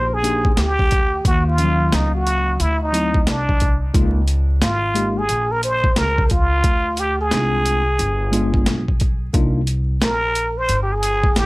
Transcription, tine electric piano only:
0, 0, Header, 1, 2, 480
1, 0, Start_track
1, 0, Key_signature, -3, "minor"
1, 0, Tempo, 674157
1, 890, Time_signature, 4, 2, 24, 8
1, 8159, End_track
2, 0, Start_track
2, 0, Title_t, "Tine electric piano"
2, 0, Program_c, 0, 4
2, 0, Note_on_c, 0, 58, 54
2, 0, Note_on_c, 0, 62, 51
2, 0, Note_on_c, 0, 63, 49
2, 0, Note_on_c, 0, 67, 65
2, 132, Note_off_c, 0, 58, 0
2, 134, Note_off_c, 0, 62, 0
2, 134, Note_off_c, 0, 63, 0
2, 136, Note_off_c, 0, 67, 0
2, 164, Note_on_c, 0, 58, 61
2, 169, Note_on_c, 0, 62, 58
2, 170, Note_on_c, 0, 63, 57
2, 174, Note_on_c, 0, 67, 70
2, 354, Note_off_c, 0, 58, 0
2, 356, Note_off_c, 0, 62, 0
2, 357, Note_off_c, 0, 63, 0
2, 358, Note_off_c, 0, 67, 0
2, 1124, Note_on_c, 0, 53, 53
2, 1126, Note_on_c, 0, 58, 59
2, 1130, Note_on_c, 0, 61, 58
2, 1131, Note_on_c, 0, 77, 71
2, 1169, Note_on_c, 0, 54, 70
2, 1185, Note_off_c, 0, 53, 0
2, 1813, Note_off_c, 0, 58, 0
2, 1814, Note_off_c, 0, 61, 0
2, 1815, Note_off_c, 0, 77, 0
2, 1834, Note_off_c, 0, 54, 0
2, 2083, Note_on_c, 0, 54, 66
2, 2085, Note_on_c, 0, 57, 53
2, 2087, Note_on_c, 0, 60, 62
2, 2091, Note_on_c, 0, 64, 67
2, 2273, Note_off_c, 0, 54, 0
2, 2274, Note_off_c, 0, 57, 0
2, 2275, Note_off_c, 0, 60, 0
2, 2277, Note_off_c, 0, 64, 0
2, 2804, Note_on_c, 0, 56, 76
2, 2806, Note_on_c, 0, 58, 71
2, 2809, Note_on_c, 0, 63, 66
2, 2811, Note_on_c, 0, 65, 80
2, 2994, Note_off_c, 0, 56, 0
2, 2995, Note_off_c, 0, 58, 0
2, 2996, Note_off_c, 0, 63, 0
2, 2997, Note_off_c, 0, 65, 0
2, 3520, Note_on_c, 0, 56, 73
2, 3522, Note_on_c, 0, 58, 65
2, 3525, Note_on_c, 0, 63, 60
2, 3529, Note_on_c, 0, 67, 84
2, 3712, Note_off_c, 0, 56, 0
2, 3713, Note_off_c, 0, 58, 0
2, 3714, Note_off_c, 0, 63, 0
2, 3716, Note_off_c, 0, 67, 0
2, 5205, Note_on_c, 0, 56, 62
2, 5208, Note_on_c, 0, 60, 54
2, 5210, Note_on_c, 0, 62, 57
2, 5213, Note_on_c, 0, 63, 54
2, 5261, Note_on_c, 0, 65, 72
2, 5270, Note_off_c, 0, 63, 0
2, 5568, Note_off_c, 0, 56, 0
2, 5570, Note_off_c, 0, 60, 0
2, 5571, Note_off_c, 0, 62, 0
2, 5597, Note_off_c, 0, 65, 0
2, 5923, Note_on_c, 0, 56, 82
2, 5926, Note_on_c, 0, 59, 70
2, 5930, Note_on_c, 0, 62, 78
2, 5933, Note_on_c, 0, 65, 88
2, 6288, Note_off_c, 0, 56, 0
2, 6289, Note_off_c, 0, 59, 0
2, 6291, Note_off_c, 0, 62, 0
2, 6292, Note_off_c, 0, 65, 0
2, 6646, Note_on_c, 0, 58, 79
2, 6648, Note_on_c, 0, 62, 79
2, 6651, Note_on_c, 0, 63, 76
2, 6653, Note_on_c, 0, 65, 86
2, 6835, Note_off_c, 0, 58, 0
2, 6836, Note_off_c, 0, 62, 0
2, 6837, Note_off_c, 0, 63, 0
2, 6838, Note_off_c, 0, 65, 0
2, 8159, End_track
0, 0, End_of_file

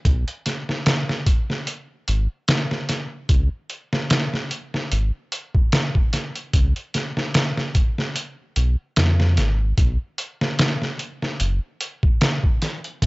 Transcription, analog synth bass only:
0, 0, Header, 1, 2, 480
1, 0, Start_track
1, 0, Tempo, 810811
1, 28, Time_signature, 4, 2, 24, 8
1, 7733, End_track
2, 0, Start_track
2, 0, Title_t, "Analog synth bass"
2, 0, Program_c, 0, 38
2, 32, Note_on_c, 0, 35, 106
2, 148, Note_off_c, 0, 35, 0
2, 1234, Note_on_c, 0, 32, 98
2, 1349, Note_off_c, 0, 32, 0
2, 1951, Note_on_c, 0, 37, 106
2, 2067, Note_off_c, 0, 37, 0
2, 2914, Note_on_c, 0, 32, 83
2, 3029, Note_off_c, 0, 32, 0
2, 3872, Note_on_c, 0, 37, 96
2, 3988, Note_off_c, 0, 37, 0
2, 5071, Note_on_c, 0, 35, 89
2, 5188, Note_off_c, 0, 35, 0
2, 5313, Note_on_c, 0, 41, 95
2, 5552, Note_on_c, 0, 32, 95
2, 5560, Note_off_c, 0, 41, 0
2, 5765, Note_off_c, 0, 32, 0
2, 5791, Note_on_c, 0, 35, 99
2, 5907, Note_off_c, 0, 35, 0
2, 6751, Note_on_c, 0, 30, 85
2, 6867, Note_off_c, 0, 30, 0
2, 7711, Note_on_c, 0, 35, 104
2, 7733, Note_off_c, 0, 35, 0
2, 7733, End_track
0, 0, End_of_file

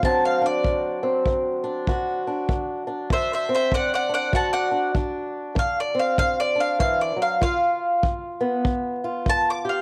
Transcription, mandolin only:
0, 0, Header, 1, 2, 480
1, 0, Start_track
1, 0, Tempo, 616016
1, 24, Time_signature, 4, 2, 24, 8
1, 7649, End_track
2, 0, Start_track
2, 0, Title_t, "Mandolin"
2, 0, Program_c, 0, 25
2, 38, Note_on_c, 0, 81, 82
2, 187, Note_off_c, 0, 81, 0
2, 198, Note_on_c, 0, 77, 85
2, 347, Note_off_c, 0, 77, 0
2, 357, Note_on_c, 0, 74, 83
2, 1762, Note_off_c, 0, 74, 0
2, 2435, Note_on_c, 0, 72, 81
2, 2441, Note_on_c, 0, 76, 80
2, 2581, Note_off_c, 0, 72, 0
2, 2589, Note_off_c, 0, 76, 0
2, 2597, Note_on_c, 0, 72, 64
2, 2606, Note_on_c, 0, 76, 71
2, 2741, Note_off_c, 0, 72, 0
2, 2752, Note_off_c, 0, 76, 0
2, 2762, Note_on_c, 0, 72, 77
2, 2770, Note_on_c, 0, 76, 72
2, 2905, Note_off_c, 0, 72, 0
2, 2912, Note_off_c, 0, 76, 0
2, 2915, Note_on_c, 0, 74, 75
2, 2921, Note_on_c, 0, 78, 89
2, 3059, Note_off_c, 0, 74, 0
2, 3068, Note_on_c, 0, 74, 66
2, 3070, Note_off_c, 0, 78, 0
2, 3079, Note_on_c, 0, 78, 79
2, 3215, Note_off_c, 0, 74, 0
2, 3222, Note_off_c, 0, 78, 0
2, 3224, Note_on_c, 0, 74, 73
2, 3231, Note_on_c, 0, 78, 87
2, 3375, Note_off_c, 0, 74, 0
2, 3379, Note_off_c, 0, 78, 0
2, 3388, Note_on_c, 0, 78, 70
2, 3396, Note_on_c, 0, 81, 79
2, 3524, Note_off_c, 0, 78, 0
2, 3528, Note_on_c, 0, 74, 84
2, 3531, Note_off_c, 0, 81, 0
2, 3534, Note_on_c, 0, 78, 95
2, 3835, Note_off_c, 0, 74, 0
2, 3851, Note_off_c, 0, 78, 0
2, 4356, Note_on_c, 0, 77, 87
2, 4507, Note_off_c, 0, 77, 0
2, 4521, Note_on_c, 0, 74, 76
2, 4669, Note_off_c, 0, 74, 0
2, 4671, Note_on_c, 0, 77, 72
2, 4813, Note_off_c, 0, 77, 0
2, 4822, Note_on_c, 0, 77, 102
2, 4980, Note_off_c, 0, 77, 0
2, 4986, Note_on_c, 0, 74, 88
2, 5142, Note_off_c, 0, 74, 0
2, 5145, Note_on_c, 0, 77, 82
2, 5290, Note_off_c, 0, 77, 0
2, 5300, Note_on_c, 0, 77, 96
2, 5458, Note_off_c, 0, 77, 0
2, 5464, Note_on_c, 0, 74, 74
2, 5620, Note_off_c, 0, 74, 0
2, 5625, Note_on_c, 0, 77, 78
2, 5777, Note_off_c, 0, 77, 0
2, 5787, Note_on_c, 0, 77, 88
2, 6715, Note_off_c, 0, 77, 0
2, 7242, Note_on_c, 0, 81, 104
2, 7387, Note_off_c, 0, 81, 0
2, 7404, Note_on_c, 0, 86, 91
2, 7548, Note_off_c, 0, 86, 0
2, 7552, Note_on_c, 0, 77, 74
2, 7649, Note_off_c, 0, 77, 0
2, 7649, End_track
0, 0, End_of_file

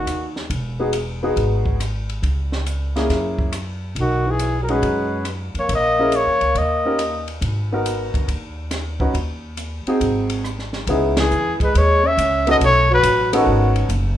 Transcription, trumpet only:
0, 0, Header, 1, 2, 480
1, 0, Start_track
1, 0, Key_signature, 5, "minor"
1, 0, Tempo, 432277
1, 554, Time_signature, 4, 2, 24, 8
1, 12083, Key_signature, 4, "minor"
1, 15734, End_track
2, 0, Start_track
2, 0, Title_t, "Trumpet"
2, 0, Program_c, 0, 56
2, 0, Note_on_c, 0, 66, 65
2, 387, Note_off_c, 0, 66, 0
2, 4453, Note_on_c, 0, 66, 72
2, 4782, Note_on_c, 0, 68, 77
2, 4799, Note_off_c, 0, 66, 0
2, 5129, Note_off_c, 0, 68, 0
2, 5143, Note_on_c, 0, 70, 53
2, 5236, Note_on_c, 0, 71, 72
2, 5253, Note_off_c, 0, 70, 0
2, 5860, Note_off_c, 0, 71, 0
2, 6212, Note_on_c, 0, 73, 73
2, 6338, Note_off_c, 0, 73, 0
2, 6385, Note_on_c, 0, 75, 87
2, 6837, Note_on_c, 0, 73, 81
2, 6853, Note_off_c, 0, 75, 0
2, 7305, Note_on_c, 0, 75, 74
2, 7322, Note_off_c, 0, 73, 0
2, 8097, Note_off_c, 0, 75, 0
2, 12432, Note_on_c, 0, 68, 83
2, 12864, Note_off_c, 0, 68, 0
2, 12922, Note_on_c, 0, 71, 77
2, 13078, Note_on_c, 0, 73, 92
2, 13095, Note_off_c, 0, 71, 0
2, 13409, Note_on_c, 0, 76, 95
2, 13426, Note_off_c, 0, 73, 0
2, 13864, Note_off_c, 0, 76, 0
2, 13889, Note_on_c, 0, 75, 89
2, 13949, Note_off_c, 0, 75, 0
2, 14044, Note_on_c, 0, 73, 98
2, 14320, Note_off_c, 0, 73, 0
2, 14367, Note_on_c, 0, 71, 95
2, 14789, Note_off_c, 0, 71, 0
2, 14845, Note_on_c, 0, 66, 65
2, 15267, Note_off_c, 0, 66, 0
2, 15734, End_track
0, 0, End_of_file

